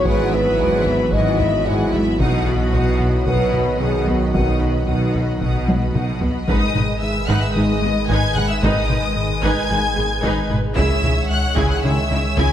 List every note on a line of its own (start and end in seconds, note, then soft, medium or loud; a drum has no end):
0.00 2.21 G#1 medium
0.00 3.23 E3 medium
0.00 2.16 F#3 medium
0.00 0.29 G#3 medium
0.00 2.18 B3 medium
0.00 2.20 E4 medium
0.00 2.16 F#4 medium
0.04 0.53 G#1 medium
0.04 0.52 G#2 medium
0.04 0.21 G#2 loud
0.04 0.32 B4 loud
0.04 0.30 F#5 medium
0.04 0.30 G#5 medium
0.04 taiko medium
0.32 0.48 G#2 medium
0.32 0.59 B3 medium
0.32 1.11 B4 loud
0.32 0.59 E5 medium
0.32 0.60 B5 medium
0.58 1.06 G#1 loud
0.58 1.06 G#2 medium
0.58 0.74 G#2 medium
0.58 0.85 G#3 medium
0.58 0.86 F#5 medium
0.58 0.87 G#5 medium
0.58 taiko low medium
0.84 1.02 G#2 medium
0.84 1.12 B3 medium
0.84 1.13 E5 medium
0.84 1.13 B5 medium
0.84 taiko low soft
1.12 1.60 G#1 medium
1.12 1.28 G#2 loud
1.12 1.60 G#2 loud
1.12 1.37 G#3 medium
1.12 1.66 D#5 loud
1.12 1.37 F#5 medium
1.12 1.38 G#5 medium
1.12 taiko medium
1.39 1.55 G#2 medium
1.39 1.66 B3 medium
1.39 1.66 E5 medium
1.39 1.66 B5 medium
1.39 taiko low medium
1.65 2.14 G#1 medium
1.65 1.82 G#2 medium
1.65 2.14 G#2 medium
1.65 1.93 G#3 medium
1.65 2.20 E4 loud
1.65 1.93 F#5 medium
1.65 1.94 G#5 medium
1.92 2.09 G#3 medium
1.92 2.19 B3 medium
1.92 2.19 E5 medium
1.92 2.20 B5 medium
1.92 taiko low soft
2.19 2.67 B1 medium
2.19 6.48 B1 medium
2.19 2.36 B2 loud
2.19 2.67 B2 medium
2.19 6.44 F#3 medium
2.19 6.18 F#3 medium
2.19 6.44 B3 medium
2.19 2.44 D#4 medium
2.19 6.44 F#4 medium
2.19 2.46 F#4 medium
2.19 2.44 F#5 medium
2.19 6.48 F#5 medium
2.19 2.45 D#6 medium
2.19 taiko medium
2.46 2.62 B2 medium
2.46 2.73 B3 medium
2.46 3.26 F#4 loud
2.46 2.73 D#5 medium
2.46 2.74 B5 medium
2.72 3.21 B1 medium
2.72 2.89 B2 medium
2.72 3.21 B2 medium
2.72 3.00 D#4 medium
2.72 3.00 F#5 medium
2.72 3.00 D#6 medium
2.72 taiko low medium
2.99 3.16 B2 medium
2.99 3.27 B3 medium
2.99 3.26 D#5 medium
2.99 3.27 B5 medium
2.99 taiko low soft
3.25 3.74 B1 medium
3.25 3.43 B2 loud
3.25 3.74 B2 medium
3.25 6.21 D#3 medium
3.25 3.52 D#4 medium
3.25 3.81 B4 loud
3.25 3.51 F#5 medium
3.25 3.51 D#6 medium
3.25 taiko medium
3.53 3.69 B2 medium
3.53 3.80 B3 medium
3.53 3.80 D#5 medium
3.53 3.80 B5 medium
3.53 taiko low medium
3.80 4.28 B1 medium
3.80 4.28 B2 medium
3.80 3.97 B2 medium
3.80 4.07 D#4 soft
3.80 4.07 G#4 loud
3.80 4.07 F#5 medium
3.80 4.07 D#6 medium
4.06 4.34 B3 soft
4.06 4.23 B3 medium
4.06 4.21 F#4 medium
4.06 4.34 D#5 medium
4.06 4.34 B5 medium
4.06 taiko low soft
4.23 4.35 E4 medium
4.33 4.81 B1 medium
4.33 4.81 B2 medium
4.33 4.50 B2 loud
4.33 4.59 D#4 medium
4.33 6.22 D#4 medium
4.33 4.59 F#5 medium
4.33 4.59 D#6 medium
4.33 taiko medium
4.60 4.77 B2 medium
4.60 4.87 B3 medium
4.60 4.88 D#5 soft
4.60 4.87 B5 medium
4.87 5.35 B1 medium
4.87 5.04 B2 medium
4.87 5.35 B2 medium
4.87 5.14 D#4 soft
4.87 5.14 F#5 soft
4.87 5.14 D#6 medium
4.87 taiko low soft
5.14 5.30 B2 medium
5.14 5.41 B3 soft
5.14 5.42 D#5 medium
5.14 5.41 B5 soft
5.14 taiko low soft
5.41 5.88 B1 medium
5.41 5.57 B2 medium
5.41 5.88 B2 medium
5.41 5.66 D#4 soft
5.41 5.66 F#5 medium
5.41 5.66 D#6 soft
5.41 taiko medium
5.66 5.84 B2 medium
5.66 5.94 B3 soft
5.66 5.95 D#5 soft
5.66 5.95 B5 soft
5.66 taiko high medium
5.94 6.42 B1 medium
5.94 6.42 B2 medium
5.94 6.11 B2 medium
5.94 6.21 D#4 soft
5.94 6.21 F#5 soft
5.94 6.21 D#6 soft
5.94 taiko mid medium
6.20 6.48 B3 soft
6.20 6.38 B3 medium
6.20 6.48 D#5 medium
6.20 6.48 B5 medium
6.20 taiko low medium
6.47 10.78 G#1 medium
6.47 6.56 G#1 medium
6.47 6.57 G#2 medium
6.47 6.65 G#2 loud
6.47 10.73 D#3 medium
6.47 6.67 D#3 medium
6.47 10.73 G#3 medium
6.47 6.68 G#3 medium
6.47 6.67 B3 medium
6.47 6.73 D#4 medium
6.47 6.67 D#4 medium
6.47 10.73 G#4 medium
6.47 6.73 B4 medium
6.47 10.73 B4 medium
6.47 6.99 D#5 medium
6.47 6.97 D#6 loud
6.47 taiko loud
6.74 6.83 G#1 medium
6.74 6.91 G#2 medium
6.74 6.83 G#2 medium
6.74 6.82 D#4 medium
6.74 6.82 B4 medium
6.74 taiko mid medium
7.01 7.18 G#2 medium
7.01 7.29 E5 medium
7.01 7.28 E6 medium
7.28 7.37 G#1 medium
7.28 7.45 G#2 loud
7.28 7.37 G#2 medium
7.28 7.53 D#4 medium
7.28 7.53 B4 medium
7.28 7.42 F#5 medium
7.28 7.42 F#6 medium
7.28 taiko medium
7.42 7.55 E5 medium
7.42 7.56 E6 medium
7.54 7.64 G#1 medium
7.54 7.64 G#2 medium
7.54 7.74 D#3 medium
7.54 7.73 G#3 medium
7.54 7.72 G#3 medium
7.54 7.74 B3 medium
7.54 7.64 D#4 medium
7.54 7.75 D#4 medium
7.54 7.64 B4 medium
7.54 8.09 D#5 medium
7.54 8.09 D#6 medium
7.82 7.91 G#1 medium
7.82 7.91 G#2 medium
7.82 7.98 G#3 medium
7.82 7.91 B3 medium
7.82 7.91 G#4 medium
8.08 8.18 G#1 medium
8.08 8.25 G#2 loud
8.08 8.17 G#2 medium
8.08 8.35 D#4 medium
8.08 8.35 B4 medium
8.08 8.35 G#5 medium
8.08 8.35 G#6 loud
8.08 taiko medium
8.35 8.45 G#1 medium
8.35 8.44 G#2 medium
8.35 8.52 G#2 medium
8.35 8.44 D#4 medium
8.35 8.45 B4 medium
8.35 8.49 F#5 medium
8.35 8.49 F#6 loud
8.35 taiko mid medium
8.49 8.62 E5 medium
8.49 8.63 E6 medium
8.62 8.71 G#1 medium
8.62 8.79 G#2 loud
8.62 8.71 G#2 medium
8.62 8.81 D#3 medium
8.62 8.81 G#3 medium
8.62 8.82 B3 medium
8.62 8.88 D#4 medium
8.62 8.82 D#4 medium
8.62 8.88 B4 medium
8.62 9.41 D#5 medium
8.62 9.43 D#6 loud
8.62 taiko loud
8.89 8.98 G#1 medium
8.89 9.06 G#2 medium
8.89 8.98 G#2 medium
8.89 8.97 D#4 medium
8.89 8.97 B4 medium
8.89 taiko mid medium
9.16 9.32 G#2 medium
9.43 9.52 G#1 medium
9.43 9.59 G#2 medium
9.43 9.52 G#2 medium
9.43 9.68 D#4 medium
9.43 9.68 B4 medium
9.43 10.48 G#5 medium
9.43 10.50 G#6 loud
9.43 taiko medium
9.69 9.78 G#1 medium
9.69 9.78 G#2 medium
9.69 9.88 D#3 medium
9.69 9.88 G#3 medium
9.69 9.86 G#3 medium
9.69 9.89 B3 medium
9.69 9.78 D#4 medium
9.69 9.89 D#4 medium
9.69 9.78 B4 medium
9.96 10.05 G#1 medium
9.96 10.04 G#2 medium
9.96 10.12 G#3 medium
9.96 10.04 B3 medium
9.96 10.04 G#4 medium
10.22 10.32 G#1 medium
10.22 10.31 G#2 medium
10.22 10.40 G#2 medium
10.22 10.48 D#4 medium
10.22 10.48 B4 medium
10.22 taiko medium
10.49 10.58 G#1 medium
10.49 10.66 G#2 medium
10.49 10.58 G#2 medium
10.49 10.57 D#4 medium
10.49 10.57 B4 medium
10.49 taiko mid medium
10.76 10.93 C#2 loud
10.76 12.53 C#2 medium
10.76 10.85 C#2 loud
10.76 10.84 C#3 medium
10.76 10.95 D#3 medium
10.76 12.53 D#3 loud
10.76 10.95 G#3 medium
10.76 12.53 G#3 medium
10.76 10.95 C#4 medium
10.76 11.01 E4 medium
10.76 11.02 G#4 medium
10.76 10.95 G#4 medium
10.76 12.53 G#4 medium
10.76 12.53 C#5 medium
10.76 11.26 E5 medium
10.76 11.26 E6 loud
10.76 taiko loud
11.03 11.19 C#2 medium
11.03 11.12 C#2 medium
11.03 11.11 C#3 medium
11.03 11.11 E4 medium
11.03 11.11 G#4 medium
11.03 taiko mid medium
11.30 11.46 C#2 medium
11.30 11.57 F#5 loud
11.30 11.57 F#6 loud
11.56 11.73 C#2 loud
11.56 11.65 C#2 loud
11.56 11.64 C#3 loud
11.56 11.82 E4 medium
11.56 11.81 G#4 medium
11.56 11.71 G#5 medium
11.56 11.71 G#6 loud
11.56 taiko medium
11.71 11.85 F#5 medium
11.71 11.84 F#6 medium
11.82 11.92 C#2 medium
11.82 11.91 C#3 medium
11.82 12.00 C#3 medium
11.82 12.03 D#3 medium
11.82 12.03 G#3 medium
11.82 12.03 C#4 medium
11.82 11.91 E4 medium
11.82 11.91 G#4 medium
11.82 12.03 G#4 medium
11.82 12.38 E5 medium
11.82 12.35 E6 loud
12.10 12.19 C#2 medium
12.10 12.26 C#3 medium
12.10 12.19 C#3 medium
12.10 12.18 D#4 medium
12.10 12.18 E4 medium
12.36 12.53 C#2 loud
12.36 12.46 C#2 medium
12.36 12.46 C#3 medium
12.36 12.53 E4 medium
12.36 12.53 G#4 medium
12.36 12.53 G#5 medium
12.36 12.53 G#6 loud
12.36 taiko medium